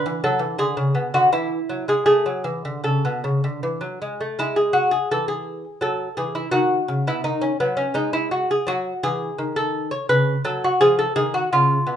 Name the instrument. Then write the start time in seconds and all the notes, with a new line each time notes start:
lute
Already playing: B4
0.06 E3
0.24 F#3 A4
0.39 E3
0.58 D3 G#4
0.77 C#3
0.95 B2
1.14 D3 F#4
1.32 E3 E4
1.69 F#3
1.88 G#3 G#4
2.06 A3 G#4
2.26 F#3
2.44 E3
2.65 D3
2.84 C#3 A4
3.05 B2
3.24 C#3
3.44 D3
3.63 E3
3.81 F#3
4.02 G#3
4.21 A3
4.39 G#3 E4
4.56 G#4
4.73 F#4
4.91 G#4
5.11 E3 A4
5.28 G#4
5.81 F#3 A4
6.17 E3 G#4
6.35 E4
6.51 D#3 F#4
6.88 C#3
7.07 B2 E4
7.24 D#3 D#4
7.41 C#4
7.60 F#3 B3
7.77 C#4
7.94 G#3 D#4
8.13 E4
8.31 F#4
8.51 G#4
8.67 F#3 F#4
9.03 E3 G#4
9.38 D#3
9.56 A4
9.91 C#5
10.09 C#3 B4
10.45 F#3 A4
10.64 F#4
10.81 F3 G#4
10.99 A4
11.16 D#3 G#4
11.34 F#4
11.53 C#3 F4
11.87 B2